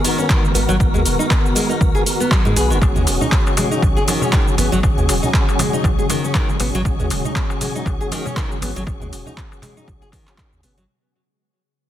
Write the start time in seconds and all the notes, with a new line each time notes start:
Already playing: D#3 G#3 B3 F#4 A#4
0.04 D#3, open hi-hat, shaker
0.18 C#4, shaker
0.29 D#3, kick, clap, shaker
0.45 shaker
0.54 G#1 B3 F#4 A#4, open hi-hat, shaker
0.69 G#1 F#3, shaker
0.80 G#1 B3 F#4 A#4, kick, shaker
0.94 D#2 G#3, shaker
1.05 D#1, open hi-hat, shaker
1.19 D#4, shaker
1.31 kick, clap, shaker
1.46 shaker
1.55 G#3, open hi-hat, shaker
1.69 D#4, shaker
1.81 B1, kick, shaker
1.95 G#4, shaker
2.06 B3 F#4 A#4, open hi-hat, shaker
2.20 B3, shaker
2.31 F#3, kick, clap, shaker
2.45 G#2 G#3, shaker
2.56 B1 B3 F#4 G#4 B4, open hi-hat, shaker
2.70 F#1 D#3, shaker
2.81 G#1 C#3 F#3 G#3 C#4 F#4 G#4, kick, high conga, darbuka tek, shaker
2.95 D#2 G#3, low conga, shaker
3.07 D#1, open hi-hat, muted conga, darbuka tek, shaker
3.21 D#4, low conga, shaker
3.32 kick, clap, darbuka tek, shaker
3.45 muted conga, darbuka ka, shaker
3.57 G#3, open hi-hat, darbuka tek, high conga, darbuka dum, shaker
3.71 D#4, shaker
3.82 B1, kick, muted conga, darbuka tek, shaker
3.97 G#4, shaker
4.08 D#3, open hi-hat, high conga, darbuka tek, shaker
4.21 C#4, darbuka ka, darbuka dum, shaker
4.32 D#3, kick, clap, muted conga, darbuka tek, shaker
4.48 shaker
4.57 G#1 B3 C#4 F#4 G#4, open hi-hat, high conga, darbuka tek, shaker
4.72 G#1 F#3, muted conga, shaker
4.83 G#1 C#4 F#4 G#4, kick, darbuka tek, shaker
4.98 D#2 G#3, low conga, shaker
5.09 D#1, open hi-hat, muted conga, darbuka tek, shaker
5.23 D#4, high conga, low conga, shaker
5.34 kick, clap, darbuka tek, shaker
5.48 muted conga, darbuka ka, shaker
5.59 G#3, open hi-hat, high conga, darbuka tek, low conga, darbuka dum, shaker
5.73 D#4, shaker
5.84 B1, kick, muted conga, darbuka tek, high conga, shaker
5.99 G#4, shaker
6.09 D#3, open hi-hat, darbuka ka, high conga, darbuka tek, shaker
6.24 C#4, shaker
6.34 D#3, kick, clap, muted conga, high conga, darbuka tek, shaker
6.49 shaker
6.60 G#1 B3 C#4 F#4 G#4, open hi-hat, darbuka tek, darbuka dum, shaker
6.74 G#1 F#3, muted conga, shaker
6.85 G#1 C#4 F#4 G#4, kick, high conga, darbuka tek, shaker
6.99 D#2 G#3, low conga, shaker
7.10 D#1, open hi-hat, muted conga, darbuka tek, shaker
7.24 D#4, low conga, shaker
7.35 kick, clap, darbuka tek, shaker
7.50 muted conga, darbuka ka, shaker
7.61 G#3, open hi-hat, darbuka tek, high conga, darbuka dum, shaker
7.75 D#4, shaker
7.86 B1, kick, darbuka tek, shaker
8.01 G#4, shaker
8.11 D#3, open hi-hat, high conga, darbuka tek, shaker
8.25 C#4, darbuka ka, darbuka dum, shaker
8.36 D#3, kick, clap, muted conga, darbuka tek, shaker
8.52 shaker
8.61 G#1 B3 C#4 F#4 G#4, open hi-hat, high conga, darbuka tek, shaker
8.76 G#1 F#3, muted conga, shaker
8.87 G#1 C#4 F#4 G#4, kick, darbuka tek, high conga, shaker
9.00 D#2 G#3, low conga, shaker
9.12 D#1, open hi-hat, muted conga, darbuka tek, shaker
9.26 D#4, high conga, low conga, shaker
9.37 kick, clap, darbuka tek, shaker
9.51 muted conga, darbuka ka, shaker
9.62 G#3, clap, open hi-hat, darbuka tek, high conga, low conga, darbuka dum, shaker
9.77 D#4, shaker
9.88 B1, kick, muted conga, darbuka tek, high conga, shaker
10.02 G#4, shaker
10.12 D#3, kick, open hi-hat, darbuka ka, darbuka tek, high conga, shaker
10.27 C#4, clap, shaker
10.38 D#3, kick, clap, muted conga, darbuka tek, high conga, shaker
10.52 D#2, shaker
10.63 F#1 B3 C#4 F#4 G#4, open hi-hat, darbuka tek, darbuka dum, shaker
10.77 G#1 F#3, muted conga, shaker